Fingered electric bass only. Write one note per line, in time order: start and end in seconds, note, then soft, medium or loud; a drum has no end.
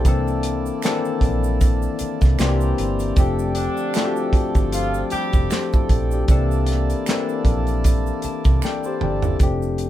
0.06 0.69 C2 loud
1.22 1.86 A#1 medium
2.01 muted fingered electric bass stroke medium
2.22 2.36 C2 medium
2.40 2.71 C2 loud
2.79 3.11 G1 loud
3.17 3.67 F1 loud
4.33 muted fingered electric bass stroke soft
4.56 5.02 G1 medium
5.13 muted fingered electric bass stroke soft
5.34 5.48 F1 medium
5.90 6.22 A#1 medium
6.29 6.93 C2 loud
7.45 8.09 A#1 medium
8.24 muted fingered electric bass stroke soft
8.46 8.60 C2 medium
9.02 9.34 G1 loud
9.41 9.90 F1 medium